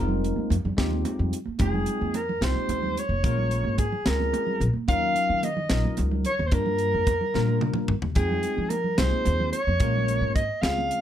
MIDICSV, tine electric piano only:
0, 0, Header, 1, 2, 480
1, 0, Start_track
1, 0, Key_signature, -4, "minor"
1, 0, Tempo, 546946
1, 1409, Time_signature, 6, 3, 24, 8
1, 9662, End_track
2, 0, Start_track
2, 0, Title_t, "Tine electric piano"
2, 0, Program_c, 0, 4
2, 0, Note_on_c, 0, 56, 74
2, 0, Note_on_c, 0, 60, 71
2, 0, Note_on_c, 0, 63, 75
2, 0, Note_on_c, 0, 65, 70
2, 0, Note_on_c, 0, 70, 84
2, 478, Note_off_c, 0, 56, 0
2, 481, Note_off_c, 0, 60, 0
2, 482, Note_off_c, 0, 63, 0
2, 484, Note_off_c, 0, 65, 0
2, 486, Note_off_c, 0, 70, 0
2, 675, Note_on_c, 0, 56, 70
2, 678, Note_on_c, 0, 60, 66
2, 683, Note_on_c, 0, 63, 67
2, 688, Note_on_c, 0, 65, 65
2, 690, Note_on_c, 0, 67, 80
2, 1198, Note_off_c, 0, 56, 0
2, 1199, Note_off_c, 0, 60, 0
2, 1202, Note_off_c, 0, 63, 0
2, 1204, Note_off_c, 0, 65, 0
2, 1205, Note_off_c, 0, 67, 0
2, 1392, Note_on_c, 0, 56, 68
2, 1396, Note_on_c, 0, 60, 56
2, 1398, Note_on_c, 0, 63, 60
2, 1400, Note_on_c, 0, 65, 54
2, 1410, Note_on_c, 0, 79, 67
2, 1916, Note_off_c, 0, 56, 0
2, 1918, Note_off_c, 0, 60, 0
2, 1919, Note_off_c, 0, 63, 0
2, 1920, Note_off_c, 0, 65, 0
2, 1925, Note_off_c, 0, 79, 0
2, 2125, Note_on_c, 0, 60, 55
2, 2126, Note_on_c, 0, 56, 58
2, 2131, Note_on_c, 0, 63, 54
2, 2135, Note_on_c, 0, 65, 52
2, 2138, Note_on_c, 0, 67, 65
2, 2642, Note_off_c, 0, 60, 0
2, 2643, Note_off_c, 0, 56, 0
2, 2645, Note_off_c, 0, 63, 0
2, 2647, Note_off_c, 0, 65, 0
2, 2649, Note_off_c, 0, 67, 0
2, 2842, Note_on_c, 0, 56, 66
2, 2847, Note_on_c, 0, 58, 61
2, 2849, Note_on_c, 0, 61, 60
2, 2855, Note_on_c, 0, 65, 63
2, 2860, Note_on_c, 0, 70, 74
2, 3361, Note_off_c, 0, 56, 0
2, 3364, Note_off_c, 0, 58, 0
2, 3365, Note_off_c, 0, 61, 0
2, 3367, Note_off_c, 0, 65, 0
2, 3370, Note_off_c, 0, 70, 0
2, 3562, Note_on_c, 0, 56, 62
2, 3565, Note_on_c, 0, 60, 53
2, 3570, Note_on_c, 0, 61, 51
2, 3572, Note_on_c, 0, 65, 61
2, 3578, Note_on_c, 0, 68, 66
2, 4081, Note_off_c, 0, 56, 0
2, 4082, Note_off_c, 0, 60, 0
2, 4085, Note_off_c, 0, 61, 0
2, 4086, Note_off_c, 0, 65, 0
2, 4089, Note_off_c, 0, 68, 0
2, 4284, Note_on_c, 0, 54, 69
2, 4285, Note_on_c, 0, 61, 62
2, 4290, Note_on_c, 0, 63, 65
2, 4291, Note_on_c, 0, 65, 60
2, 4299, Note_on_c, 0, 70, 79
2, 4802, Note_off_c, 0, 54, 0
2, 4802, Note_off_c, 0, 61, 0
2, 4805, Note_off_c, 0, 63, 0
2, 4805, Note_off_c, 0, 65, 0
2, 4810, Note_off_c, 0, 70, 0
2, 5003, Note_on_c, 0, 54, 63
2, 5004, Note_on_c, 0, 61, 56
2, 5010, Note_on_c, 0, 63, 56
2, 5014, Note_on_c, 0, 65, 53
2, 5017, Note_on_c, 0, 70, 75
2, 5522, Note_off_c, 0, 54, 0
2, 5522, Note_off_c, 0, 61, 0
2, 5525, Note_off_c, 0, 63, 0
2, 5527, Note_off_c, 0, 65, 0
2, 5528, Note_off_c, 0, 70, 0
2, 5720, Note_on_c, 0, 55, 67
2, 5723, Note_on_c, 0, 58, 61
2, 5725, Note_on_c, 0, 62, 66
2, 5729, Note_on_c, 0, 65, 58
2, 5734, Note_on_c, 0, 70, 71
2, 6240, Note_off_c, 0, 55, 0
2, 6242, Note_off_c, 0, 58, 0
2, 6243, Note_off_c, 0, 62, 0
2, 6245, Note_off_c, 0, 65, 0
2, 6247, Note_off_c, 0, 70, 0
2, 6440, Note_on_c, 0, 55, 73
2, 6444, Note_on_c, 0, 58, 65
2, 6451, Note_on_c, 0, 62, 63
2, 6451, Note_on_c, 0, 65, 67
2, 6454, Note_on_c, 0, 70, 86
2, 6960, Note_off_c, 0, 55, 0
2, 6962, Note_off_c, 0, 58, 0
2, 6965, Note_off_c, 0, 62, 0
2, 6966, Note_off_c, 0, 65, 0
2, 6967, Note_off_c, 0, 70, 0
2, 7153, Note_on_c, 0, 56, 63
2, 7155, Note_on_c, 0, 60, 60
2, 7162, Note_on_c, 0, 63, 62
2, 7167, Note_on_c, 0, 65, 63
2, 7168, Note_on_c, 0, 79, 72
2, 7677, Note_off_c, 0, 56, 0
2, 7678, Note_off_c, 0, 60, 0
2, 7681, Note_off_c, 0, 63, 0
2, 7684, Note_off_c, 0, 65, 0
2, 7684, Note_off_c, 0, 79, 0
2, 7878, Note_on_c, 0, 56, 61
2, 7881, Note_on_c, 0, 60, 58
2, 7885, Note_on_c, 0, 63, 57
2, 7890, Note_on_c, 0, 65, 55
2, 7892, Note_on_c, 0, 68, 68
2, 8399, Note_off_c, 0, 56, 0
2, 8401, Note_off_c, 0, 60, 0
2, 8403, Note_off_c, 0, 63, 0
2, 8405, Note_off_c, 0, 65, 0
2, 8406, Note_off_c, 0, 68, 0
2, 8602, Note_on_c, 0, 56, 70
2, 8610, Note_on_c, 0, 58, 67
2, 8611, Note_on_c, 0, 61, 57
2, 8617, Note_on_c, 0, 65, 62
2, 8622, Note_on_c, 0, 70, 70
2, 9121, Note_off_c, 0, 56, 0
2, 9125, Note_off_c, 0, 58, 0
2, 9126, Note_off_c, 0, 61, 0
2, 9129, Note_off_c, 0, 65, 0
2, 9131, Note_off_c, 0, 70, 0
2, 9316, Note_on_c, 0, 56, 59
2, 9320, Note_on_c, 0, 60, 56
2, 9327, Note_on_c, 0, 61, 58
2, 9329, Note_on_c, 0, 65, 57
2, 9333, Note_on_c, 0, 68, 66
2, 9662, Note_off_c, 0, 56, 0
2, 9662, Note_off_c, 0, 60, 0
2, 9662, Note_off_c, 0, 61, 0
2, 9662, Note_off_c, 0, 65, 0
2, 9662, Note_off_c, 0, 68, 0
2, 9662, End_track
0, 0, End_of_file